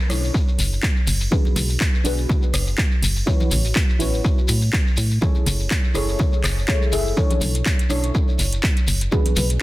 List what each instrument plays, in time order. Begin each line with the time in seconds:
0.09 fm bass B1, synth stab D4 E4 A4 C#5, cross-stick, open hi-hat, shekere
0.24 shekere
0.34 kick, shekere
0.48 shekere
0.58 fm bass F#1, open hi-hat, shekere
0.73 shekere
0.83 kick, clap, shekere
0.96 shekere
1.07 fm bass F#1, open hi-hat, shekere
1.20 shekere
1.31 synth stab D4 F#4 G#4 B4, kick, high conga, shekere
1.45 high conga, shekere
1.56 fm bass B1, open hi-hat, low conga, shekere
1.69 shekere
1.80 kick, clap, shekere
1.94 shekere
2.04 fm bass B1, synth stab D4 F#4 G#4 B4, open hi-hat, shekere
2.18 shekere
2.29 kick, low conga, shekere
2.42 shekere
2.54 fm bass F#1, cross-stick, open hi-hat, shekere
2.67 shekere
2.78 kick, clap, shekere
2.91 shekere
3.03 fm bass F#1, open hi-hat, shekere
3.16 shekere
3.26 synth stab E4 F#4 B4 C#5, kick, high conga, shekere
3.40 high conga, shekere
3.51 fm bass A1, open hi-hat, low conga, shekere
3.65 shekere
3.76 kick, clap, shekere
3.89 shekere
3.99 fm bass A1, synth stab E4 F#4 B4 C#5, open hi-hat, shekere
4.14 shekere
4.25 kick, shekere
4.38 shekere
4.48 fm bass A2, open hi-hat, shekere
4.61 shekere
4.73 kick, clap, shekere
4.87 shekere
4.97 fm bass A2, open hi-hat, shekere
5.11 shekere
5.21 synth stab E4 G#4 A4 C#5, kick, high conga, shekere
5.35 high conga, shekere
5.46 fm bass F#1, open hi-hat, low conga, shekere
5.60 shekere
5.71 kick, clap, shekere
5.84 shekere
5.94 fm bass F#1, synth stab E4 G#4 A4 C#5, cross-stick, open hi-hat, shekere
6.09 shekere
6.19 kick, low conga, shekere
6.32 shekere
6.44 fm bass F#1, cross-stick, clap, open hi-hat, shekere
6.58 shekere
6.68 synth stab E4 G#4 A4 C#5, kick, clap, shekere
6.82 shekere
6.92 fm bass F#1, synth stab E4 G#4 A4 E5, open hi-hat, shekere
7.07 shekere
7.16 synth stab D4 E4 A4 C#5, kick, high conga, shekere
7.30 closed hi-hat, high conga, shekere
7.41 fm bass B1, open hi-hat, low conga, shekere
7.54 closed hi-hat, shekere
7.66 kick, clap, shekere
7.79 closed hi-hat, shekere
7.89 fm bass B1, synth stab D4 E4 A4 C#5, cross-stick, open hi-hat, shekere
8.03 closed hi-hat, shekere
8.15 kick, shekere
8.28 shekere
8.39 fm bass F#1, open hi-hat, shekere
8.53 closed hi-hat, shekere
8.63 kick, clap, shekere
8.77 closed hi-hat, shekere
8.87 fm bass F#1, open hi-hat, shekere
9.01 closed hi-hat, shekere
9.11 synth stab D4 F#4 G#4 B4, kick, high conga, shekere
9.26 closed hi-hat, high conga, shekere
9.36 fm bass B1, open hi-hat, low conga, shekere
9.50 closed hi-hat, shekere